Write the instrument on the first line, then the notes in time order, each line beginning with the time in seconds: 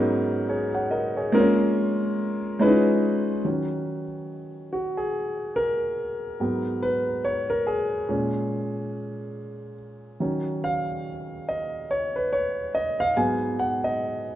grand piano
Already playing: G#2 F#3 B3 C#4 D#4 A#4
0.49 G#4 C#5
0.75 C#5 F#5
0.91 A#4 D#5
1.17 G#4 C#5
1.32 G#3 A#3 C4 F4 A#4
1.40 C#4
2.59 G#3 C#4 D#4 E4 B4
2.68 F4
3.45 D#3 F#3 C#4
4.73 F#4
4.97 G#4
5.56 A#4
6.40 G#2 F#3 B3
6.82 B4
7.25 C#5
7.50 A#4
7.67 G#4
8.09 A#2 G#3 C#4
10.20 D#3 F#3 C#4
10.64 F5
11.49 D#5
11.91 C#5
12.16 B4
12.33 C#5
12.75 D#5
13.00 F5
13.16 G#2 F#3 B3 G#5
13.59 F#5
13.84 D#5